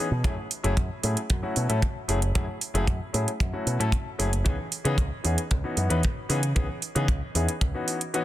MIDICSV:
0, 0, Header, 1, 4, 480
1, 0, Start_track
1, 0, Tempo, 526316
1, 225, Time_signature, 4, 2, 24, 8
1, 7519, End_track
2, 0, Start_track
2, 0, Title_t, "Grand piano"
2, 0, Program_c, 0, 0
2, 217, Note_on_c, 0, 54, 77
2, 217, Note_on_c, 0, 57, 66
2, 221, Note_on_c, 0, 61, 71
2, 222, Note_on_c, 0, 64, 70
2, 225, Note_on_c, 0, 68, 86
2, 301, Note_off_c, 0, 54, 0
2, 302, Note_off_c, 0, 57, 0
2, 304, Note_off_c, 0, 61, 0
2, 304, Note_off_c, 0, 64, 0
2, 306, Note_off_c, 0, 68, 0
2, 577, Note_on_c, 0, 54, 86
2, 580, Note_on_c, 0, 57, 84
2, 581, Note_on_c, 0, 61, 83
2, 584, Note_on_c, 0, 64, 79
2, 587, Note_on_c, 0, 68, 98
2, 660, Note_off_c, 0, 54, 0
2, 661, Note_off_c, 0, 57, 0
2, 662, Note_off_c, 0, 61, 0
2, 663, Note_off_c, 0, 64, 0
2, 665, Note_off_c, 0, 68, 0
2, 937, Note_on_c, 0, 54, 67
2, 940, Note_on_c, 0, 57, 58
2, 943, Note_on_c, 0, 61, 61
2, 945, Note_on_c, 0, 64, 59
2, 947, Note_on_c, 0, 68, 72
2, 1070, Note_off_c, 0, 54, 0
2, 1071, Note_off_c, 0, 57, 0
2, 1072, Note_off_c, 0, 61, 0
2, 1073, Note_off_c, 0, 64, 0
2, 1075, Note_off_c, 0, 68, 0
2, 1298, Note_on_c, 0, 54, 66
2, 1300, Note_on_c, 0, 57, 62
2, 1302, Note_on_c, 0, 61, 64
2, 1306, Note_on_c, 0, 64, 62
2, 1306, Note_on_c, 0, 66, 74
2, 1514, Note_off_c, 0, 54, 0
2, 1515, Note_off_c, 0, 57, 0
2, 1515, Note_off_c, 0, 61, 0
2, 1517, Note_off_c, 0, 64, 0
2, 1517, Note_off_c, 0, 66, 0
2, 1538, Note_on_c, 0, 54, 86
2, 1541, Note_on_c, 0, 57, 75
2, 1544, Note_on_c, 0, 61, 81
2, 1545, Note_on_c, 0, 64, 75
2, 1548, Note_on_c, 0, 69, 90
2, 1621, Note_off_c, 0, 54, 0
2, 1622, Note_off_c, 0, 57, 0
2, 1623, Note_off_c, 0, 61, 0
2, 1624, Note_off_c, 0, 64, 0
2, 1625, Note_off_c, 0, 69, 0
2, 1898, Note_on_c, 0, 54, 77
2, 1900, Note_on_c, 0, 57, 72
2, 1902, Note_on_c, 0, 61, 70
2, 1905, Note_on_c, 0, 64, 71
2, 1906, Note_on_c, 0, 68, 86
2, 1982, Note_off_c, 0, 54, 0
2, 1983, Note_off_c, 0, 57, 0
2, 1984, Note_off_c, 0, 61, 0
2, 1986, Note_off_c, 0, 64, 0
2, 1986, Note_off_c, 0, 68, 0
2, 2141, Note_on_c, 0, 54, 77
2, 2141, Note_on_c, 0, 57, 69
2, 2145, Note_on_c, 0, 61, 69
2, 2147, Note_on_c, 0, 64, 67
2, 2149, Note_on_c, 0, 68, 85
2, 2223, Note_off_c, 0, 54, 0
2, 2224, Note_off_c, 0, 57, 0
2, 2225, Note_off_c, 0, 61, 0
2, 2226, Note_off_c, 0, 64, 0
2, 2227, Note_off_c, 0, 68, 0
2, 2498, Note_on_c, 0, 54, 88
2, 2501, Note_on_c, 0, 57, 81
2, 2502, Note_on_c, 0, 61, 82
2, 2505, Note_on_c, 0, 64, 82
2, 2506, Note_on_c, 0, 68, 99
2, 2580, Note_off_c, 0, 54, 0
2, 2582, Note_off_c, 0, 57, 0
2, 2582, Note_off_c, 0, 61, 0
2, 2584, Note_off_c, 0, 64, 0
2, 2584, Note_off_c, 0, 68, 0
2, 2854, Note_on_c, 0, 54, 65
2, 2857, Note_on_c, 0, 57, 59
2, 2859, Note_on_c, 0, 61, 61
2, 2861, Note_on_c, 0, 64, 60
2, 2864, Note_on_c, 0, 68, 71
2, 2988, Note_off_c, 0, 54, 0
2, 2990, Note_off_c, 0, 57, 0
2, 2990, Note_off_c, 0, 61, 0
2, 2992, Note_off_c, 0, 64, 0
2, 2993, Note_off_c, 0, 68, 0
2, 3216, Note_on_c, 0, 54, 67
2, 3218, Note_on_c, 0, 57, 59
2, 3220, Note_on_c, 0, 61, 62
2, 3224, Note_on_c, 0, 64, 61
2, 3224, Note_on_c, 0, 66, 75
2, 3433, Note_off_c, 0, 54, 0
2, 3434, Note_off_c, 0, 57, 0
2, 3434, Note_off_c, 0, 61, 0
2, 3437, Note_off_c, 0, 64, 0
2, 3437, Note_off_c, 0, 66, 0
2, 3457, Note_on_c, 0, 54, 88
2, 3459, Note_on_c, 0, 57, 78
2, 3461, Note_on_c, 0, 61, 80
2, 3464, Note_on_c, 0, 64, 79
2, 3467, Note_on_c, 0, 69, 97
2, 3540, Note_off_c, 0, 54, 0
2, 3541, Note_off_c, 0, 57, 0
2, 3542, Note_off_c, 0, 61, 0
2, 3544, Note_off_c, 0, 64, 0
2, 3545, Note_off_c, 0, 69, 0
2, 3814, Note_on_c, 0, 54, 77
2, 3818, Note_on_c, 0, 57, 73
2, 3818, Note_on_c, 0, 61, 71
2, 3820, Note_on_c, 0, 64, 72
2, 3823, Note_on_c, 0, 68, 91
2, 3900, Note_off_c, 0, 54, 0
2, 3902, Note_off_c, 0, 57, 0
2, 3902, Note_off_c, 0, 61, 0
2, 3903, Note_off_c, 0, 64, 0
2, 3904, Note_off_c, 0, 68, 0
2, 4052, Note_on_c, 0, 52, 78
2, 4056, Note_on_c, 0, 59, 72
2, 4056, Note_on_c, 0, 61, 69
2, 4062, Note_on_c, 0, 63, 70
2, 4063, Note_on_c, 0, 68, 83
2, 4139, Note_off_c, 0, 52, 0
2, 4141, Note_off_c, 0, 59, 0
2, 4141, Note_off_c, 0, 61, 0
2, 4144, Note_off_c, 0, 63, 0
2, 4144, Note_off_c, 0, 68, 0
2, 4419, Note_on_c, 0, 52, 91
2, 4422, Note_on_c, 0, 59, 80
2, 4424, Note_on_c, 0, 61, 86
2, 4426, Note_on_c, 0, 63, 83
2, 4427, Note_on_c, 0, 68, 97
2, 4501, Note_off_c, 0, 52, 0
2, 4502, Note_off_c, 0, 59, 0
2, 4503, Note_off_c, 0, 61, 0
2, 4504, Note_off_c, 0, 63, 0
2, 4505, Note_off_c, 0, 68, 0
2, 4776, Note_on_c, 0, 52, 65
2, 4778, Note_on_c, 0, 59, 61
2, 4780, Note_on_c, 0, 61, 61
2, 4784, Note_on_c, 0, 63, 61
2, 4786, Note_on_c, 0, 68, 74
2, 4909, Note_off_c, 0, 52, 0
2, 4910, Note_off_c, 0, 59, 0
2, 4911, Note_off_c, 0, 61, 0
2, 4913, Note_off_c, 0, 63, 0
2, 4914, Note_off_c, 0, 68, 0
2, 5142, Note_on_c, 0, 52, 69
2, 5144, Note_on_c, 0, 59, 61
2, 5146, Note_on_c, 0, 61, 61
2, 5150, Note_on_c, 0, 63, 61
2, 5151, Note_on_c, 0, 66, 75
2, 5356, Note_off_c, 0, 52, 0
2, 5357, Note_off_c, 0, 59, 0
2, 5357, Note_off_c, 0, 61, 0
2, 5359, Note_off_c, 0, 63, 0
2, 5360, Note_off_c, 0, 66, 0
2, 5377, Note_on_c, 0, 52, 88
2, 5382, Note_on_c, 0, 59, 78
2, 5382, Note_on_c, 0, 61, 79
2, 5385, Note_on_c, 0, 63, 76
2, 5386, Note_on_c, 0, 71, 97
2, 5460, Note_off_c, 0, 52, 0
2, 5462, Note_off_c, 0, 59, 0
2, 5463, Note_off_c, 0, 61, 0
2, 5464, Note_off_c, 0, 63, 0
2, 5464, Note_off_c, 0, 71, 0
2, 5738, Note_on_c, 0, 52, 82
2, 5740, Note_on_c, 0, 59, 73
2, 5744, Note_on_c, 0, 61, 72
2, 5745, Note_on_c, 0, 63, 72
2, 5747, Note_on_c, 0, 68, 88
2, 5822, Note_off_c, 0, 52, 0
2, 5823, Note_off_c, 0, 59, 0
2, 5825, Note_off_c, 0, 61, 0
2, 5825, Note_off_c, 0, 63, 0
2, 5826, Note_off_c, 0, 68, 0
2, 5977, Note_on_c, 0, 52, 78
2, 5980, Note_on_c, 0, 59, 71
2, 5981, Note_on_c, 0, 61, 70
2, 5983, Note_on_c, 0, 63, 70
2, 5985, Note_on_c, 0, 68, 86
2, 6062, Note_off_c, 0, 52, 0
2, 6063, Note_off_c, 0, 59, 0
2, 6064, Note_off_c, 0, 61, 0
2, 6065, Note_off_c, 0, 63, 0
2, 6065, Note_off_c, 0, 68, 0
2, 6340, Note_on_c, 0, 52, 88
2, 6340, Note_on_c, 0, 59, 84
2, 6343, Note_on_c, 0, 61, 82
2, 6346, Note_on_c, 0, 63, 82
2, 6348, Note_on_c, 0, 68, 99
2, 6421, Note_off_c, 0, 52, 0
2, 6421, Note_off_c, 0, 59, 0
2, 6423, Note_off_c, 0, 61, 0
2, 6424, Note_off_c, 0, 63, 0
2, 6426, Note_off_c, 0, 68, 0
2, 6701, Note_on_c, 0, 52, 65
2, 6705, Note_on_c, 0, 59, 59
2, 6706, Note_on_c, 0, 61, 59
2, 6708, Note_on_c, 0, 63, 60
2, 6710, Note_on_c, 0, 68, 73
2, 6831, Note_off_c, 0, 52, 0
2, 6833, Note_off_c, 0, 59, 0
2, 6834, Note_off_c, 0, 61, 0
2, 6835, Note_off_c, 0, 63, 0
2, 6836, Note_off_c, 0, 68, 0
2, 7063, Note_on_c, 0, 52, 68
2, 7065, Note_on_c, 0, 59, 60
2, 7066, Note_on_c, 0, 61, 60
2, 7070, Note_on_c, 0, 63, 61
2, 7072, Note_on_c, 0, 66, 76
2, 7276, Note_off_c, 0, 52, 0
2, 7277, Note_off_c, 0, 59, 0
2, 7278, Note_off_c, 0, 61, 0
2, 7280, Note_off_c, 0, 63, 0
2, 7281, Note_off_c, 0, 66, 0
2, 7421, Note_on_c, 0, 52, 83
2, 7424, Note_on_c, 0, 61, 77
2, 7425, Note_on_c, 0, 59, 75
2, 7428, Note_on_c, 0, 63, 78
2, 7430, Note_on_c, 0, 66, 92
2, 7519, Note_off_c, 0, 52, 0
2, 7519, Note_off_c, 0, 59, 0
2, 7519, Note_off_c, 0, 61, 0
2, 7519, Note_off_c, 0, 63, 0
2, 7519, Note_off_c, 0, 66, 0
2, 7519, End_track
3, 0, Start_track
3, 0, Title_t, "Picked electric bass"
3, 0, Program_c, 1, 34
3, 103, Note_on_c, 1, 47, 89
3, 204, Note_off_c, 1, 47, 0
3, 221, Note_on_c, 1, 42, 85
3, 325, Note_off_c, 1, 42, 0
3, 586, Note_on_c, 1, 30, 91
3, 685, Note_off_c, 1, 30, 0
3, 701, Note_on_c, 1, 42, 89
3, 805, Note_off_c, 1, 42, 0
3, 945, Note_on_c, 1, 45, 87
3, 1047, Note_off_c, 1, 45, 0
3, 1187, Note_on_c, 1, 42, 77
3, 1288, Note_off_c, 1, 42, 0
3, 1427, Note_on_c, 1, 47, 83
3, 1528, Note_off_c, 1, 47, 0
3, 1545, Note_on_c, 1, 45, 76
3, 1645, Note_off_c, 1, 45, 0
3, 1900, Note_on_c, 1, 30, 71
3, 2104, Note_off_c, 1, 30, 0
3, 2146, Note_on_c, 1, 42, 88
3, 2248, Note_off_c, 1, 42, 0
3, 2501, Note_on_c, 1, 30, 94
3, 2603, Note_off_c, 1, 30, 0
3, 2621, Note_on_c, 1, 42, 89
3, 2725, Note_off_c, 1, 42, 0
3, 2863, Note_on_c, 1, 45, 85
3, 2966, Note_off_c, 1, 45, 0
3, 3102, Note_on_c, 1, 42, 78
3, 3206, Note_off_c, 1, 42, 0
3, 3342, Note_on_c, 1, 47, 86
3, 3446, Note_off_c, 1, 47, 0
3, 3465, Note_on_c, 1, 45, 78
3, 3565, Note_off_c, 1, 45, 0
3, 3823, Note_on_c, 1, 30, 73
3, 4026, Note_off_c, 1, 30, 0
3, 4066, Note_on_c, 1, 37, 89
3, 4168, Note_off_c, 1, 37, 0
3, 4422, Note_on_c, 1, 49, 94
3, 4523, Note_off_c, 1, 49, 0
3, 4540, Note_on_c, 1, 37, 90
3, 4645, Note_off_c, 1, 37, 0
3, 4784, Note_on_c, 1, 40, 85
3, 4887, Note_off_c, 1, 40, 0
3, 5026, Note_on_c, 1, 37, 78
3, 5128, Note_off_c, 1, 37, 0
3, 5262, Note_on_c, 1, 42, 85
3, 5366, Note_off_c, 1, 42, 0
3, 5384, Note_on_c, 1, 40, 80
3, 5484, Note_off_c, 1, 40, 0
3, 5740, Note_on_c, 1, 49, 72
3, 5944, Note_off_c, 1, 49, 0
3, 5984, Note_on_c, 1, 37, 88
3, 6087, Note_off_c, 1, 37, 0
3, 6344, Note_on_c, 1, 49, 95
3, 6445, Note_off_c, 1, 49, 0
3, 6460, Note_on_c, 1, 37, 87
3, 6564, Note_off_c, 1, 37, 0
3, 6703, Note_on_c, 1, 40, 89
3, 6806, Note_off_c, 1, 40, 0
3, 6943, Note_on_c, 1, 37, 75
3, 7046, Note_off_c, 1, 37, 0
3, 7519, End_track
4, 0, Start_track
4, 0, Title_t, "Drums"
4, 222, Note_on_c, 9, 36, 124
4, 225, Note_on_c, 9, 42, 49
4, 313, Note_off_c, 9, 36, 0
4, 316, Note_off_c, 9, 42, 0
4, 464, Note_on_c, 9, 46, 92
4, 555, Note_off_c, 9, 46, 0
4, 587, Note_on_c, 9, 42, 56
4, 678, Note_off_c, 9, 42, 0
4, 702, Note_on_c, 9, 36, 99
4, 704, Note_on_c, 9, 42, 46
4, 793, Note_off_c, 9, 36, 0
4, 795, Note_off_c, 9, 42, 0
4, 944, Note_on_c, 9, 46, 98
4, 1035, Note_off_c, 9, 46, 0
4, 1066, Note_on_c, 9, 42, 58
4, 1158, Note_off_c, 9, 42, 0
4, 1183, Note_on_c, 9, 42, 44
4, 1186, Note_on_c, 9, 36, 112
4, 1274, Note_off_c, 9, 42, 0
4, 1277, Note_off_c, 9, 36, 0
4, 1423, Note_on_c, 9, 46, 95
4, 1514, Note_off_c, 9, 46, 0
4, 1547, Note_on_c, 9, 42, 59
4, 1638, Note_off_c, 9, 42, 0
4, 1664, Note_on_c, 9, 36, 101
4, 1666, Note_on_c, 9, 42, 49
4, 1755, Note_off_c, 9, 36, 0
4, 1757, Note_off_c, 9, 42, 0
4, 1904, Note_on_c, 9, 46, 97
4, 1995, Note_off_c, 9, 46, 0
4, 2026, Note_on_c, 9, 42, 57
4, 2118, Note_off_c, 9, 42, 0
4, 2146, Note_on_c, 9, 42, 49
4, 2147, Note_on_c, 9, 36, 111
4, 2237, Note_off_c, 9, 42, 0
4, 2238, Note_off_c, 9, 36, 0
4, 2384, Note_on_c, 9, 46, 96
4, 2475, Note_off_c, 9, 46, 0
4, 2508, Note_on_c, 9, 42, 61
4, 2599, Note_off_c, 9, 42, 0
4, 2622, Note_on_c, 9, 36, 85
4, 2625, Note_on_c, 9, 42, 49
4, 2713, Note_off_c, 9, 36, 0
4, 2716, Note_off_c, 9, 42, 0
4, 2866, Note_on_c, 9, 46, 93
4, 2957, Note_off_c, 9, 46, 0
4, 2990, Note_on_c, 9, 42, 61
4, 3082, Note_off_c, 9, 42, 0
4, 3103, Note_on_c, 9, 36, 106
4, 3107, Note_on_c, 9, 42, 45
4, 3194, Note_off_c, 9, 36, 0
4, 3198, Note_off_c, 9, 42, 0
4, 3346, Note_on_c, 9, 46, 89
4, 3438, Note_off_c, 9, 46, 0
4, 3471, Note_on_c, 9, 42, 61
4, 3562, Note_off_c, 9, 42, 0
4, 3578, Note_on_c, 9, 36, 90
4, 3587, Note_on_c, 9, 42, 48
4, 3669, Note_off_c, 9, 36, 0
4, 3679, Note_off_c, 9, 42, 0
4, 3827, Note_on_c, 9, 46, 96
4, 3918, Note_off_c, 9, 46, 0
4, 3949, Note_on_c, 9, 42, 61
4, 4040, Note_off_c, 9, 42, 0
4, 4064, Note_on_c, 9, 42, 52
4, 4066, Note_on_c, 9, 36, 108
4, 4155, Note_off_c, 9, 42, 0
4, 4157, Note_off_c, 9, 36, 0
4, 4303, Note_on_c, 9, 46, 91
4, 4395, Note_off_c, 9, 46, 0
4, 4426, Note_on_c, 9, 42, 63
4, 4517, Note_off_c, 9, 42, 0
4, 4540, Note_on_c, 9, 36, 96
4, 4545, Note_on_c, 9, 42, 51
4, 4631, Note_off_c, 9, 36, 0
4, 4637, Note_off_c, 9, 42, 0
4, 4784, Note_on_c, 9, 46, 92
4, 4875, Note_off_c, 9, 46, 0
4, 4906, Note_on_c, 9, 42, 66
4, 4997, Note_off_c, 9, 42, 0
4, 5023, Note_on_c, 9, 42, 47
4, 5026, Note_on_c, 9, 36, 94
4, 5114, Note_off_c, 9, 42, 0
4, 5118, Note_off_c, 9, 36, 0
4, 5263, Note_on_c, 9, 46, 90
4, 5354, Note_off_c, 9, 46, 0
4, 5385, Note_on_c, 9, 42, 63
4, 5476, Note_off_c, 9, 42, 0
4, 5502, Note_on_c, 9, 42, 49
4, 5514, Note_on_c, 9, 36, 93
4, 5593, Note_off_c, 9, 42, 0
4, 5605, Note_off_c, 9, 36, 0
4, 5743, Note_on_c, 9, 46, 93
4, 5834, Note_off_c, 9, 46, 0
4, 5864, Note_on_c, 9, 42, 63
4, 5955, Note_off_c, 9, 42, 0
4, 5982, Note_on_c, 9, 42, 51
4, 5984, Note_on_c, 9, 36, 108
4, 6073, Note_off_c, 9, 42, 0
4, 6075, Note_off_c, 9, 36, 0
4, 6222, Note_on_c, 9, 46, 91
4, 6313, Note_off_c, 9, 46, 0
4, 6345, Note_on_c, 9, 42, 64
4, 6436, Note_off_c, 9, 42, 0
4, 6460, Note_on_c, 9, 36, 97
4, 6463, Note_on_c, 9, 42, 51
4, 6551, Note_off_c, 9, 36, 0
4, 6555, Note_off_c, 9, 42, 0
4, 6705, Note_on_c, 9, 46, 94
4, 6796, Note_off_c, 9, 46, 0
4, 6827, Note_on_c, 9, 42, 66
4, 6918, Note_off_c, 9, 42, 0
4, 6943, Note_on_c, 9, 36, 110
4, 6946, Note_on_c, 9, 42, 49
4, 7034, Note_off_c, 9, 36, 0
4, 7037, Note_off_c, 9, 42, 0
4, 7184, Note_on_c, 9, 46, 92
4, 7275, Note_off_c, 9, 46, 0
4, 7306, Note_on_c, 9, 42, 64
4, 7397, Note_off_c, 9, 42, 0
4, 7425, Note_on_c, 9, 42, 52
4, 7516, Note_off_c, 9, 42, 0
4, 7519, End_track
0, 0, End_of_file